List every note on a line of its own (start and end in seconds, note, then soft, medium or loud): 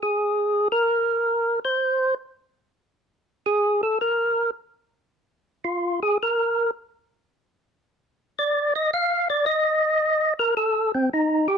0.03 0.68 G#4 medium
0.72 1.59 A#4 medium
1.65 2.15 C5 medium
3.46 3.81 G#4 medium
3.83 3.98 A4 medium
4.01 4.51 A#4 medium
5.64 6.00 F4 medium
6.03 6.18 G#4 medium
6.23 6.71 A#4 medium
8.39 8.74 D5 medium
8.76 8.91 D#5 medium
8.93 9.28 F5 loud
9.30 9.45 D5 medium
9.46 10.34 D#5 loud
10.39 10.55 A#4 medium
10.57 10.92 A4 medium
10.95 11.10 C4 medium
11.13 11.48 D#4 medium
11.48 11.58 G4 medium